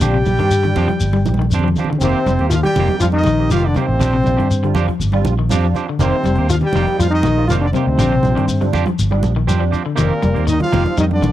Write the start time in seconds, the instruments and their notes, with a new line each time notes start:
Already playing: trombone section G3, trombone G4, trumpet G5
0.01 fingered electric bass A#1, clean electric guitar D3 F3 C4 D4 G4, cajon bass, cajon slap, low conga, shekere
0.14 clean electric guitar C3
0.25 fingered electric bass A#1, muted clean electric guitar stroke, cajon bass, cajon slap, high conga, shekere
0.39 fingered electric bass G2, clean electric guitar D#3 C4 D4 G4, cajon bass, cajon slap
0.51 muted clean electric guitar stroke, shekere
0.63 clean electric guitar D3, muted clean electric guitar stroke, cajon slap, low conga
0.76 fingered electric bass F2, clean electric guitar F3 C4 D4 G4, high conga, low conga, shekere
0.88 clean electric guitar F3, muted clean electric guitar stroke, cajon bass, high conga
1.00 fingered electric bass G1, shekere
1.13 clean electric guitar G3, muted clean electric guitar stroke, high conga
1.26 fingered electric bass A#1, muted clean electric guitar stroke, cajon bass, cajon slap, high conga, shekere
1.34 high conga
1.39 clean electric guitar D#3, muted clean electric guitar stroke, high conga
1.50 fingered electric bass F2, muted clean electric guitar stroke, low conga, shekere
1.54 clean electric guitar C4 D4 G4
1.59 low conga
1.64 clean electric guitar F3
1.68 low conga
1.76 clean electric guitar F3 C4, cajon bass, low conga, shekere
1.80 clean electric guitar D4 G4
1.84 low conga
1.90 clean electric guitar D3, muted clean electric guitar stroke, low conga
1.99 fingered electric bass F1, trombone section C3, clean electric guitar D#3, tine electric piano A#3 C4 D#4 G4, trombone C4, cajon bass, low conga, shekere
2.03 clean electric guitar A#3 C4 G4, trumpet C5, muted clean electric guitar stroke
2.26 fingered electric bass F1, clean electric guitar G3, muted clean electric guitar stroke, cajon bass, high conga, shekere
2.38 fingered electric bass D#2, tine electric piano A#3 C4 D#4 G4, clean electric guitar C4 G4, cajon slap
2.42 clean electric guitar A#3
2.49 clean electric guitar D#3, trombone section F3, trombone F4, muted clean electric guitar stroke, shekere
2.55 trumpet F5
2.63 trombone section G3, trombone G4, trumpet G5, muted clean electric guitar stroke, cajon slap, high conga, low conga
2.75 fingered electric bass F1, clean electric guitar D#3 F3, high conga, low conga, shekere
2.80 clean electric guitar A#3 C4 G4
2.88 tine electric piano A#3 C4 D#4 G4, cajon bass, high conga
3.00 fingered electric bass F2, trombone section F3, clean electric guitar G3, trombone F4, trumpet F5, shekere
3.12 trombone section D#3, trombone D#4, muted clean electric guitar stroke, high conga
3.17 trumpet D#5
3.23 fingered electric bass A#1, clean electric guitar D#3, muted clean electric guitar stroke, cajon bass, cajon slap, high conga, shekere
3.38 tine electric piano A#3 C4 D#4 G4, muted clean electric guitar stroke
3.49 fingered electric bass F1, clean electric guitar D#3 A#3 G4, trombone section F3, trombone F4, trumpet F5, high conga, shekere
3.64 trombone section D3, trombone D4, trumpet D5
3.74 clean electric guitar C3 D#3 A#3 C4 G4, trombone section C3, tine electric piano A#3 C4 D#4 G4, trombone C4, trumpet C5, cajon bass, high conga, shekere
3.88 fingered electric bass A1, muted clean electric guitar stroke
4.00 fingered electric bass A#1, clean electric guitar F3 C4 D4 G4, muted clean electric guitar stroke, cajon bass, low conga, shekere
4.14 clean electric guitar C3
4.24 fingered electric bass A#1, tine electric piano G3 C4 D4 F4, muted clean electric guitar stroke, cajon bass, cajon slap, high conga, shekere
4.37 fingered electric bass G2, clean electric guitar D#3 C4 D4 G4, cajon bass, cajon slap
4.51 muted clean electric guitar stroke, shekere
4.63 clean electric guitar D3, tine electric piano G3 C4 D4 F4, muted clean electric guitar stroke, cajon slap
4.74 fingered electric bass F2, clean electric guitar F3 C4 D4 G4, high conga, low conga, shekere
4.88 clean electric guitar F3, muted clean electric guitar stroke, cajon bass
4.99 fingered electric bass G1, shekere
5.12 tine electric piano G3 C4 D4 F4, clean electric guitar G3, muted clean electric guitar stroke, high conga
5.25 fingered electric bass A#1, muted clean electric guitar stroke, cajon bass, cajon slap, high conga, shekere
5.38 clean electric guitar D#3, muted clean electric guitar stroke
5.49 fingered electric bass F2, clean electric guitar F3 C4 D4 G4, tine electric piano G3 C4 D4 F4, high conga, shekere
5.64 clean electric guitar F3
5.74 clean electric guitar F3 C4 D4 G4, cajon bass, cajon slap, shekere
5.88 clean electric guitar D3, muted clean electric guitar stroke
5.99 fingered electric bass F1, trombone section C3, clean electric guitar D#3 A#3 C4 G4, tine electric piano G3 A#3 C4 D#4, trombone C4, trumpet C5, cajon bass, low conga, shekere
6.24 fingered electric bass F1, clean electric guitar G3, muted clean electric guitar stroke, cajon bass, high conga, shekere
6.35 fingered electric bass D#2, tine electric piano G3 C4, clean electric guitar C4 G4, cajon slap
6.40 tine electric piano A#3 D4, clean electric guitar A#3
6.49 clean electric guitar D#3, trombone section F3, trombone F4, trumpet F5, muted clean electric guitar stroke, shekere
6.61 trombone section G3, trombone G4, muted clean electric guitar stroke, cajon slap, low conga
6.66 trumpet G5
6.73 fingered electric bass F1, clean electric guitar D#3 F3 A#3 C4 G4, high conga, low conga, shekere
6.87 tine electric piano G3 A#3 C4 D#4, muted clean electric guitar stroke, cajon bass, cajon slap
6.99 fingered electric bass F2, trombone section F3, clean electric guitar G3, trombone F4, trumpet F5, shekere
7.10 trombone section D#3, trombone D#4, muted clean electric guitar stroke
7.15 trumpet D#5
7.23 fingered electric bass A#1, clean electric guitar D#3, muted clean electric guitar stroke, cajon bass, high conga, shekere
7.37 tine electric piano G3 A#3 C4 F4, muted clean electric guitar stroke
7.47 fingered electric bass F1, clean electric guitar D#3 A#3, trombone section F3, trombone F4, trumpet F5, high conga, shekere
7.51 clean electric guitar C4 G4
7.61 trombone section D3, trombone D4
7.66 trumpet D5
7.72 trombone section C3, clean electric guitar C3 D#3, tine electric piano G3 A#3 C4 D#4, trombone C4, cajon bass, high conga, shekere
7.76 clean electric guitar A#3 C4 G4, trumpet C5
7.87 fingered electric bass D2
7.98 fingered electric bass A#1, clean electric guitar D3 F3 C4 D4 G4, cajon bass, low conga, shekere
8.12 clean electric guitar C3
8.23 fingered electric bass A#1, tine electric piano F3 G3 C4 D4, muted clean electric guitar stroke, cajon bass, cajon slap, high conga, shekere
8.35 fingered electric bass G2, clean electric guitar D#3 C4 D4 G4, cajon bass, cajon slap
8.48 muted clean electric guitar stroke, shekere
8.61 clean electric guitar D3, tine electric piano F3 G3 C4 D4, muted clean electric guitar stroke, cajon slap, high conga
8.73 fingered electric bass F2, clean electric guitar F3 C4 D4 G4, high conga, low conga, shekere
8.86 clean electric guitar F3, muted clean electric guitar stroke, cajon bass, cajon slap, high conga
8.99 fingered electric bass G1, shekere
9.10 tine electric piano F3 G3 C4 D4, clean electric guitar G3, muted clean electric guitar stroke, high conga
9.23 fingered electric bass A#1, muted clean electric guitar stroke, cajon bass, cajon slap, high conga, shekere
9.36 clean electric guitar D#3, muted clean electric guitar stroke
9.47 fingered electric bass F2, tine electric piano F3 G3 C4 D4, clean electric guitar C4 D4 G4, high conga, shekere
9.60 clean electric guitar F3
9.71 clean electric guitar F3 C4 D4 G4, cajon bass, shekere
9.85 clean electric guitar D3, muted clean electric guitar stroke
9.96 fingered electric bass F1, trombone section A#2, clean electric guitar D#3 A#3 C4 G4, tine electric piano D#3 G3 A#3 C4, trombone A#3, trumpet A#4, cajon bass, cajon slap, low conga, shekere
10.21 fingered electric bass F1, clean electric guitar G3, muted clean electric guitar stroke, cajon bass, high conga, shekere
10.34 fingered electric bass D#2, tine electric piano D#3 G3 A#3 C4, clean electric guitar A#3 C4 G4, cajon slap
10.47 clean electric guitar D#3, trombone section D#3, trombone D#4, trumpet D#5, shekere
10.60 trombone section F3, trombone F4, trumpet F5, muted clean electric guitar stroke, cajon slap, high conga, low conga
10.72 fingered electric bass F1, clean electric guitar D#3 F3 A#3 C4 G4, high conga, low conga, shekere
10.85 tine electric piano D#3 G3 A#3 C4, muted clean electric guitar stroke, cajon bass, high conga
10.97 fingered electric bass F2, trombone section D#3, clean electric guitar G3, trombone D#4, trumpet D#5, shekere
11.11 trombone section D3, trombone D4, trumpet D5, muted clean electric guitar stroke, high conga
11.22 fingered electric bass A#1, clean electric guitar D#3, muted clean electric guitar stroke, cajon bass, high conga, shekere